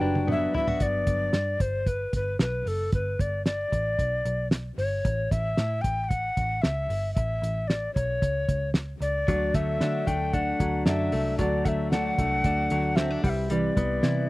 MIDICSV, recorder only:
0, 0, Header, 1, 2, 480
1, 0, Start_track
1, 0, Key_signature, 1, "major"
1, 0, Tempo, 529101
1, 731, Time_signature, 4, 2, 24, 8
1, 12968, End_track
2, 0, Start_track
2, 0, Title_t, "Recorder"
2, 0, Program_c, 0, 74
2, 0, Note_on_c, 0, 79, 95
2, 259, Note_off_c, 0, 79, 0
2, 279, Note_on_c, 0, 76, 98
2, 489, Note_off_c, 0, 76, 0
2, 510, Note_on_c, 0, 76, 94
2, 746, Note_on_c, 0, 74, 85
2, 759, Note_off_c, 0, 76, 0
2, 1461, Note_on_c, 0, 72, 81
2, 1474, Note_off_c, 0, 74, 0
2, 1702, Note_on_c, 0, 71, 81
2, 1715, Note_off_c, 0, 72, 0
2, 1938, Note_off_c, 0, 71, 0
2, 1956, Note_on_c, 0, 71, 77
2, 2169, Note_off_c, 0, 71, 0
2, 2185, Note_on_c, 0, 71, 75
2, 2429, Note_on_c, 0, 69, 82
2, 2442, Note_off_c, 0, 71, 0
2, 2662, Note_off_c, 0, 69, 0
2, 2668, Note_on_c, 0, 71, 75
2, 2908, Note_on_c, 0, 74, 81
2, 2921, Note_off_c, 0, 71, 0
2, 3127, Note_off_c, 0, 74, 0
2, 3133, Note_on_c, 0, 74, 75
2, 4060, Note_off_c, 0, 74, 0
2, 4336, Note_on_c, 0, 73, 88
2, 4820, Note_on_c, 0, 76, 102
2, 4833, Note_off_c, 0, 73, 0
2, 5274, Note_on_c, 0, 79, 95
2, 5288, Note_off_c, 0, 76, 0
2, 5477, Note_off_c, 0, 79, 0
2, 5477, Note_on_c, 0, 79, 68
2, 5522, Note_on_c, 0, 78, 93
2, 5535, Note_off_c, 0, 79, 0
2, 6003, Note_on_c, 0, 76, 87
2, 6017, Note_off_c, 0, 78, 0
2, 6472, Note_off_c, 0, 76, 0
2, 6478, Note_on_c, 0, 76, 80
2, 6963, Note_on_c, 0, 74, 74
2, 6977, Note_off_c, 0, 76, 0
2, 7198, Note_off_c, 0, 74, 0
2, 7204, Note_on_c, 0, 73, 73
2, 7896, Note_off_c, 0, 73, 0
2, 8179, Note_on_c, 0, 74, 95
2, 8664, Note_on_c, 0, 76, 92
2, 8677, Note_off_c, 0, 74, 0
2, 9136, Note_on_c, 0, 79, 93
2, 9149, Note_off_c, 0, 76, 0
2, 9373, Note_on_c, 0, 78, 95
2, 9386, Note_off_c, 0, 79, 0
2, 9849, Note_off_c, 0, 78, 0
2, 9854, Note_on_c, 0, 76, 93
2, 10302, Note_off_c, 0, 76, 0
2, 10327, Note_on_c, 0, 74, 82
2, 10568, Note_on_c, 0, 78, 75
2, 10581, Note_off_c, 0, 74, 0
2, 10597, Note_on_c, 0, 76, 82
2, 10606, Note_off_c, 0, 78, 0
2, 10799, Note_off_c, 0, 76, 0
2, 10805, Note_on_c, 0, 78, 90
2, 11756, Note_on_c, 0, 76, 78
2, 11770, Note_off_c, 0, 78, 0
2, 12004, Note_off_c, 0, 76, 0
2, 12019, Note_on_c, 0, 78, 73
2, 12059, Note_on_c, 0, 76, 80
2, 12068, Note_off_c, 0, 78, 0
2, 12261, Note_on_c, 0, 74, 70
2, 12275, Note_off_c, 0, 76, 0
2, 12968, Note_off_c, 0, 74, 0
2, 12968, End_track
0, 0, End_of_file